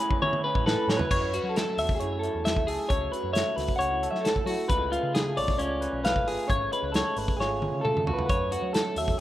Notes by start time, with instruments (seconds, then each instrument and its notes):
Already playing: clean electric guitar A2 C#4 E4 B4 C#5
0.00 clean electric guitar E3 G#4
0.11 kick
0.22 clean electric guitar E4 C#5, high tom
0.33 high tom
0.44 clean electric guitar C#4 B4
0.55 picked electric bass A1, kick
0.65 picked electric bass A1, clean electric guitar A2 A4 B4, snare
0.88 picked electric bass A2, clean electric guitar C#4 C#5, snare
0.97 clean electric guitar E4 B4, floor tom
1.07 clean electric guitar F#2 B4, picked electric bass F#2, kick
1.11 clean electric guitar C#5, crash
1.34 clean electric guitar F#3 F#4, closed hi-hat
1.43 picked electric bass F#3
1.49 clean electric guitar A4
1.56 clean electric guitar A3 A4, snare, closed hi-hat
1.77 picked electric bass E2, clean electric guitar F#3 E5, open hi-hat
1.89 kick
1.95 clean electric guitar G#4
2.00 picked electric bass F#2, clean electric guitar E4 C#5, closed hi-hat
2.19 clean electric guitar A4
2.23 clean electric guitar E4, closed hi-hat
2.35 picked electric bass E2
2.45 clean electric guitar A3 E5, snare, closed hi-hat
2.56 kick
2.67 picked electric bass C#2, clean electric guitar G#4 A4, open hi-hat
2.89 picked electric bass C#2, clean electric guitar F#2 C#5, kick, closed hi-hat
3.12 clean electric guitar F#3 B4, closed hi-hat
3.24 picked electric bass F#2
3.33 clean electric guitar A3 C#5 E5, snare, closed hi-hat
3.56 picked electric bass C#2, clean electric guitar F#3 B4, snare, open hi-hat
3.68 kick
3.76 picked electric bass C#2, clean electric guitar C#4 C#5 F#5
3.81 closed hi-hat
3.91 clean electric guitar E4
4.03 clean electric guitar A4, closed hi-hat
4.11 picked electric bass F#3, clean electric guitar E5
4.15 snare
4.21 clean electric guitar A4
4.25 clean electric guitar A3, snare, closed hi-hat
4.36 kick
4.46 picked electric bass F#3, clean electric guitar E4 F#4, open hi-hat
4.68 picked electric bass C#2, clean electric guitar C#3 G#3 A3 F4 B4, kick, closed hi-hat
4.91 clean electric guitar G#3 F4, closed hi-hat
5.03 picked electric bass C#3
5.15 clean electric guitar A3 G#4, snare, closed hi-hat
5.36 picked electric bass B1, clean electric guitar G#3 C#5 D5, open hi-hat
5.48 kick, snare
5.58 picked electric bass C#2, clean electric guitar C#4 F4 D5, closed hi-hat
5.81 clean electric guitar B4, closed hi-hat
5.93 picked electric bass B1
6.04 clean electric guitar A3 B4 F5, snare, closed hi-hat
6.16 kick
6.26 picked electric bass G#1, clean electric guitar F4 G#4, open hi-hat
6.47 picked electric bass G#1, clean electric guitar C#3 C#5, kick, closed hi-hat
6.71 clean electric guitar G#3 B4, closed hi-hat
6.83 picked electric bass C#2
6.92 clean electric guitar A3 A4 C#5, snare, closed hi-hat
7.17 picked electric bass G#1, clean electric guitar B4, open hi-hat
7.28 kick
7.37 picked electric bass G#1, clean electric guitar F4 G#4 C#5, snare
7.62 clean electric guitar F4, high tom
7.72 picked electric bass C#3
7.81 clean electric guitar A3 A4, mid tom
7.97 mid tom
8.06 picked electric bass C#2, clean electric guitar F4 F#4, floor tom
8.13 clean electric guitar B4
8.19 floor tom
8.26 clean electric guitar F#2 B4 C#5, picked electric bass F#2, kick, closed hi-hat
8.51 clean electric guitar F#3 F#4, closed hi-hat
8.62 picked electric bass F#3
8.73 clean electric guitar A3 A4, snare, closed hi-hat
8.96 picked electric bass E2, clean electric guitar F#3 E5, open hi-hat
9.08 kick